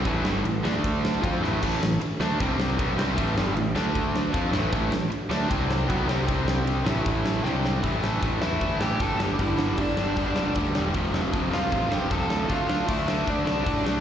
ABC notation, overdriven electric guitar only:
X:1
M:4/4
L:1/8
Q:1/4=154
K:Am
V:1 name="Overdriven electric guitar" clef=bass
[A,,E,A,] [G,,D,G,] [A,,E,] [D,A,D]3 [F,CF] [A,,E,A,] | [A,,E,A,] [A,,E,] z [D,A,D] [C,G,C]2 [B,,^F,B,] [C,G,C] | [A,,E,A,] [G,,D,G,] [A,,E,] [D,A,D]3 [F,CF] [A,,E,A,] | [A,,E,A,] [A,,E,] z [D,A,D] [C,G,C]2 [B,,^F,B,] [C,G,C] |
[C,G,C]3 [A,,E,A,]3 [C,G,C]2 | [A,,E,A,] [A,,E,A,] [A,,E,A,] [A,,E,A,] [A,,E,A,] [A,,E,A,] [A,,E,A,] [G,,D,G,] | [G,,D,G,] [G,,D,G,] [G,,D,G,] [G,,D,G,] [G,,D,G,] [G,,D,G,] [G,,D,G,] [G,,D,G,] | [F,,C,F,] [F,,C,F,] [F,,C,F,] [F,,C,F,] [F,,C,F,] [F,,C,F,] [F,,C,F,] [F,,C,F,] |
[D,A,D] [D,A,D] [D,A,D] [D,A,D] [D,A,D] [D,A,D] [D,A,D] [D,A,D] |]